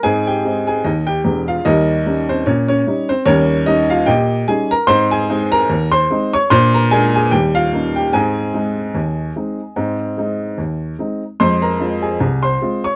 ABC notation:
X:1
M:2/4
L:1/16
Q:"Swing 16ths" 1/4=74
K:Ab
V:1 name="Upright piano"
[Aa] [Gg]2 [Aa] [Ee] [Gg]2 [Ff] | [EBe]3 [Cc] [Dd] [Dd]2 [Cc] | [DBd]2 [Ee] [Ff] [Geg]2 [Aa] [Bb] | [cc'] [Aa]2 [Bb]2 [cc']2 [dd'] |
[cc'] [Bb] [Aa] [Aa] [Gg] [Ff]2 [Gg] | [Aea]8- | [Aea]4 z4 | [cc'] [Bb]2 [Aa]2 [cc']2 [dd'] |]
V:2 name="Upright piano" clef=bass
[A,,C]2 [A,CE]2 E,,2 [_F,,,_F,,]2 | [E,,G,]2 [G,DE]2 B,,2 [G,DE]2 | [E,,G,]2 [G,D]2 B,,2 [G,DE]2 | [A,,C]2 [A,CE]2 E,,2 [A,CE]2 |
[B,,=D]2 [A,B,D]2 [E,,G,]2 [B,_DE]2 | [A,,C]2 [A,CE]2 E,,2 [A,CE]2 | [A,,C]2 [A,CE]2 E,,2 [A,CE]2 | [F,,A,]2 [A,CF]2 C,,2 [A,CF]2 |]